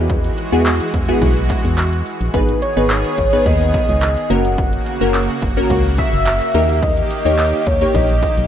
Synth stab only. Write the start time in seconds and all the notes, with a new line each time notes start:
Already playing: B3 E4 F#4 G#4
0.52 B3 E4 F#4 G#4
1.08 B3 E4 F#4 G#4
2.34 B3 D#4 G#4 B4
2.77 B3 D#4 G#4 B4
3.33 B3 D#4 G#4 B4
4.30 A#3 C#4 F#4 A#4
5.01 A#3 C#4 F#4 A#4
5.57 A#3 C#4 F#4 A#4
6.54 A#3 D#4 G4 A#4
7.25 A#3 D#4 G4 C#5
7.81 A#3 D#4 G4 C#5